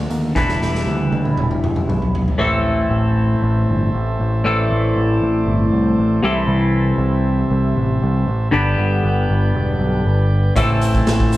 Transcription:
Already playing: D3 A3 D4 F#4 A4
0.10 D#2, closed hi-hat
0.35 E1 E3 G3 D4 E4 B4, kick, snare
0.49 snare
0.61 E1, snare
0.75 snare
0.86 D2, high tom
1.00 high tom
1.11 D2, high tom
1.25 mid tom
1.37 E1, mid tom
1.51 mid tom
1.62 E1, mid tom
1.76 mid tom
1.88 B1, mid tom
2.02 floor tom
2.15 floor tom
2.28 floor tom
2.38 A1 A2 E3 A3 C4 E4 A4 C5 E5
2.90 A1
3.42 A1
3.69 G1
3.94 A1
4.20 A1
4.44 A1 A2 E3 A3 C4 E4 A4 D5
4.71 A1
4.96 A1
5.22 A1
5.46 G1
5.72 C2
5.98 A1
6.23 C2 C3 E3 G3 C4 E4 A4 E5
6.48 C2
6.98 C2
7.50 C2
7.76 A1
8.03 C2
8.28 A1
8.51 G1 G2 D3 G3 B3 D4 G4 B4 D5 G5
8.78 G1
9.03 G1
9.29 G1
9.55 E1
9.80 B1
10.06 G1
10.55 A1 A2 E3 A3 C4 E4 A4 C5 E5 A5, kick, closed hi-hat, shaker
10.81 closed hi-hat, shaker
10.95 kick, shaker
11.07 A1, snare, closed hi-hat, shaker
11.20 kick
11.32 closed hi-hat, shaker

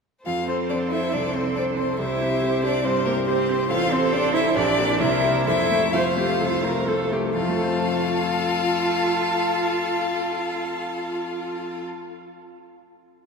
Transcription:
0.25 F2 F4 A4 C5 F5
0.47 C4 A4 C5
0.69 C4 D4 A4 C5 D5
0.90 C4 E4 A4 C5 E5
1.12 C2 D4 D5
1.34 C4 A4 C5
1.55 C4 D4 A4 C5 D5
1.76 C4 A4 C5
1.98 C2 E4 G4 C5 E5
2.21 C4 G4 C5
2.42 C4 G4 C5
2.63 C4 D4 G4 C5 D5
2.83 G2 C4 G4 C5
3.05 A#3 C4 G4 A#4 C5
3.26 C4 G4 C5
3.48 C4 G4 C5
3.69 A1 F4 A4 C5 F5
3.91 C4 A4 C5
4.12 C4 D4 A4 C5 D5
4.34 C4 E4 A4 C5 E5
4.55 A#1 D4 G4 D5
4.78 A#3 G4 D5
5.00 C2 E4 A#4 C5 E5
5.23 A#3 G4 C5
5.46 F2 E4 A4 C5 E5
5.71 A3 A4 C5
5.93 A3 F4 A4 C5 F5
6.16 A3 G4 A4 C5
6.40 C2 A4
6.63 A3 A4 A#4 C5
6.87 A3 A4 C5
7.11 A3 G4 A4 C5
7.35 F2 F4 A4 F5
7.42 F3
7.49 A3
7.56 A4
7.63 C5
7.70 A5

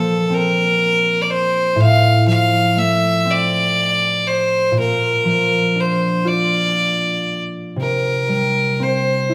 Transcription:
Already playing: A#2 F3 A#3 A4
0.30 C4
0.34 A#4
1.22 D5
1.30 C5
1.76 A2
1.80 F5
2.27 F3 F5
2.77 A3 E5
3.25 C4
3.30 D5
4.27 C5
4.72 A#2
4.79 A#4
5.25 F3
5.76 D4
5.80 C5
6.25 F4 D5
7.76 C3
7.81 A#4
8.29 G3
8.80 C4 C5
9.29 E4

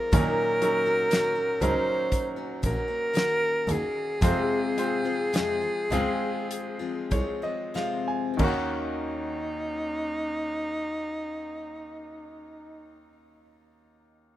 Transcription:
Already playing: F3 G#3 C4 F4 A#4
0.12 D#2 A#2 D#3 F#3 A#3 C#4 D#4 F#4 A#4, kick, closed hi-hat
0.62 F#3 C#4 D#4 A#4, closed hi-hat
0.86 A#3 C#4 F#4
1.10 D#3 A#3 C#4 F#4, snare, closed hi-hat
1.35 A#3 C#4 F#4
1.60 C#2 D#3 F#3 A#3 C#4 D#4 F#4 A#4 C5, closed hi-hat
2.12 kick, closed hi-hat
2.36 A#3 C#4 F#4
2.62 A#1 D#3 A#3 C#4 F#4 A#4, kick, closed hi-hat
2.88 A#3 C#4 F#4
3.14 D#3 A#3 C#4 F#4, snare, closed hi-hat
3.67 D#2 D#3 A#3 C#4 F#4, closed hi-hat
3.71 G#4
4.21 F2 C3 F3 G#3 C4 F4 C5, kick, closed hi-hat
4.77 G#3 C4 F4 C5, closed hi-hat
5.04 F3 G#3 C4 F4
5.33 F2 C3 F3 G#3 C4 F4, snare, closed hi-hat
5.61 F3 G#3 C4 F4
5.90 C#2 F3 G#3 C4 F4 G#4, closed hi-hat
6.51 closed hi-hat
6.79 F3 G#3 C4 F4
7.11 C2 F3 G#3 C4 F4 C#5, kick, closed hi-hat
7.42 F3 G#3 C4 F4 D#5
7.74 F2 C3 F3 G#3 C4 F4 F5, snare
8.08 G#5
8.34 D#3
8.39 D#2 A#3 C#4 D#4, kick, crash
8.44 F#4
8.48 C#4
8.54 F#4

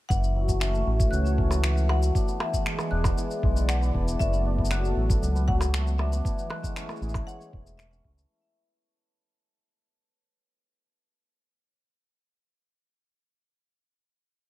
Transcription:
0.09 F#1 E3 F#5, kick, shaker
0.24 shaker
0.36 F#3 F#4
0.42 A3
0.48 A3, kick, shaker
0.60 C#4 E5, finger snap, shaker
0.73 A3, shaker
0.86 A1 E3
1.00 C#5, kick, shaker
1.11 C#2 F#3 F#6, shaker
1.25 A3, shaker
1.38 C#4, kick
1.51 A3, percussion blips, shaker
1.63 E3, finger snap, shaker
1.77 shaker
1.89 F#3 F#5, percussion blips
2.02 A3, shaker
2.15 D4, kick, shaker
2.28 B3 G#4, shaker
2.40 E3 E5, percussion blips
2.53 D5, kick, shaker
2.66 G#3, finger snap
2.79 B3, percussion blips, shaker
2.91 E1 D4 F#6
3.04 B3, kick, percussion blips, shaker
3.17 E3, shaker
3.31 shaker
3.43 B1 G#3, kick
3.56 B3, shaker
3.69 D4 F#5, finger snap, shaker
3.81 B3, shaker
3.94 E1 E3, kick
4.08 shaker
4.19 F#1 F#3 A3 E5, kick, shaker
4.33 B3, shaker
4.45 D4
4.57 B3 A4, kick
4.65 shaker
4.71 F#3 F#6, finger snap, shaker
4.85 shaker
4.96 A1 A3
5.10 B3, kick, shaker
5.22 C#2 D4, shaker
5.35 B3, shaker
5.48 F#3 F#5, kick
5.61 percussion blips, shaker
5.73 A3, finger snap, shaker
5.86 B3, shaker
5.98 D4 E5, percussion blips
6.12 B3, shaker
6.25 E3, kick, shaker
6.39 shaker
6.50 G#3 F#6, percussion blips
6.60 A3 G#4, kick
6.64 shaker
6.75 C#4, finger snap, shaker
6.88 A3, percussion blips, shaker
6.96 shaker
7.01 A1 E3 C#5, shaker
7.09 shaker
7.14 kick, percussion blips, shaker
7.26 G#3 F#5, shaker
7.40 A3, shaker
7.52 E1 E3, kick
7.65 G#4, shaker
7.78 A3 E5, finger snap, shaker
7.91 C#4, shaker
8.04 C#2 E3, kick
8.17 E4, shaker

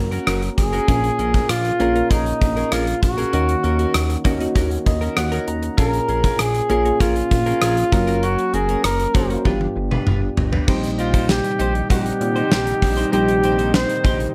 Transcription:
Already playing: F#1 A#3 C#4 F#4 A#4
0.11 C#4 F#4 A#4, closed hi-hat
0.27 F#1 C#4 F#4 A#4, cross-stick, closed hi-hat
0.42 closed hi-hat
0.58 F#1 G#4, muted clean electric guitar stroke, kick, closed hi-hat
0.73 C#4 F#4 A#4, closed hi-hat
0.88 A#1 A#2 A#3 C#4 F4 G#4 A#4, kick, closed hi-hat
1.04 closed hi-hat
1.19 A#1 C#4 G#4 A#4, closed hi-hat
1.34 C#4 G#4 A#4, kick, closed hi-hat
1.49 A#1 F4, muted clean electric guitar stroke, cross-stick, closed hi-hat
1.65 muted clean electric guitar stroke, closed hi-hat
1.80 A#1 A#3 C#4 F4 G#4 A#4, closed hi-hat
1.95 A#3 C#4 F4 A#4, muted clean electric guitar stroke, closed hi-hat
2.10 A#1 C#4 D#4 G#4 A#4, kick, closed hi-hat
2.26 muted clean electric guitar stroke, closed hi-hat
2.41 A#1, muted clean electric guitar stroke, kick, closed hi-hat
2.56 C#4 G#4 A#4, closed hi-hat
2.72 A#1 C#4 F4 G#4 A#4, cross-stick, closed hi-hat
2.87 muted clean electric guitar stroke, closed hi-hat
3.02 A#1 F#4, muted clean electric guitar stroke, kick, closed hi-hat
3.18 C#4 G#4 A#4, closed hi-hat
3.33 D#2 D#3 A#3 C#4 D#4 F#4 A#4, closed hi-hat
3.49 closed hi-hat
3.64 D#2 C#4 F#4 A#4, closed hi-hat
3.79 C#4 F#4 A#4, closed hi-hat
3.94 D#2, muted clean electric guitar stroke, cross-stick, closed hi-hat
4.10 muted clean electric guitar stroke, closed hi-hat
4.25 D#2 A#3 C#4 D#4 F#4 A#4, kick, closed hi-hat
4.40 A#3 C#4 D#4 F#4, muted clean electric guitar stroke, closed hi-hat
4.55 D#2 C#4 F#4 A#4, kick, closed hi-hat
4.71 muted clean electric guitar stroke, closed hi-hat
4.86 D#2 D#5, muted clean electric guitar stroke, kick, closed hi-hat
5.01 C#4 F#4 A#4, closed hi-hat
5.17 D#2 F#5, muted clean electric guitar stroke, cross-stick, closed hi-hat
5.32 C#4 F#4 A#4, closed hi-hat
5.47 D#2 A#5, muted clean electric guitar stroke, closed hi-hat
5.63 muted clean electric guitar stroke, closed hi-hat
5.78 A#1 A#2 A#3 C#4 F4 G#4 A#4, kick, closed hi-hat
5.93 closed hi-hat
6.08 A#1 C#4 G#4 A#4, closed hi-hat
6.24 C#4 G#4 A#4, kick, closed hi-hat
6.39 A#1 G#4, cross-stick, closed hi-hat
6.54 muted clean electric guitar stroke, closed hi-hat
6.70 A#1 A#3 C#4 F4 G#4 A#4, closed hi-hat
6.85 A#3 C#4 F4 G#4, muted clean electric guitar stroke, closed hi-hat
7.00 A#1 C#4 F4 G#4 A#4, kick, closed hi-hat
7.16 muted clean electric guitar stroke, closed hi-hat
7.31 A#1, muted clean electric guitar stroke, kick, closed hi-hat
7.46 C#4 G#4 A#4, closed hi-hat
7.61 A#1 C#4 G#4 A#4, cross-stick, closed hi-hat
7.77 muted clean electric guitar stroke, closed hi-hat
7.92 F#1 F#3 A#3 C#4 A#4, muted clean electric guitar stroke, kick, closed hi-hat
8.07 C#4 F#4 A#4, closed hi-hat
8.23 C#4 F#4 A#4, closed hi-hat
8.38 closed hi-hat
8.53 F#1 C#4 F#4 G#4 A#4, closed hi-hat
8.69 C#4 F#4 A#4, closed hi-hat
8.84 F#1 A#4, muted clean electric guitar stroke, cross-stick, closed hi-hat
8.99 muted clean electric guitar stroke, closed hi-hat
9.14 F#1 A#3 C#4 F#4 A#4 C5, kick, closed hi-hat
9.30 A#3 C#4 F#4 A#4, muted clean electric guitar stroke, closed hi-hat
9.45 G1 G2 B3 D4 F4 G4 B4, kick, high tom
9.61 muted clean electric guitar stroke, high tom
9.76 G1, muted clean electric guitar stroke
9.91 D4 F4 B4, mid tom
10.06 G1 D4 F4 B4, mid tom
10.22 muted clean electric guitar stroke
10.37 G1, muted clean electric guitar stroke, floor tom
10.52 D4 F4 B4, floor tom
10.67 A#1 A#2 C3 D#3 G3 C4 D#4 G4 C5, kick, crash
10.84 closed hi-hat
10.98 D#4 F4 G4 C5, closed hi-hat
11.14 D#4 G4 C5, kick, closed hi-hat
11.29 G4, snare
11.44 muted clean electric guitar stroke, closed hi-hat
11.59 A#1 D#4 G4 C5, closed hi-hat
11.75 muted clean electric guitar stroke, closed hi-hat
11.90 A#1 G3 C4 D#4 G4 C5 F#5, kick, closed hi-hat
12.05 muted clean electric guitar stroke, closed hi-hat
12.21 A#2, muted clean electric guitar stroke, closed hi-hat
12.36 D#4 G4 C5, closed hi-hat
12.51 A#1 D#4 G4 C5, snare
12.66 muted clean electric guitar stroke, closed hi-hat
12.82 A#1, muted clean electric guitar stroke, kick, open hi-hat
12.97 D#4 G4 C5, closed hi-hat
13.12 A#1 A#2 G3 C4 D#4 G4 C5, closed hi-hat
13.28 closed hi-hat
13.43 D#4 G4 C5, closed hi-hat
13.58 D#4 G4 C5, closed hi-hat
13.74 C5, muted clean electric guitar stroke, snare
13.89 muted clean electric guitar stroke, closed hi-hat
14.04 A#1 D#4 G4 C5, kick, closed hi-hat
14.20 muted clean electric guitar stroke, closed hi-hat

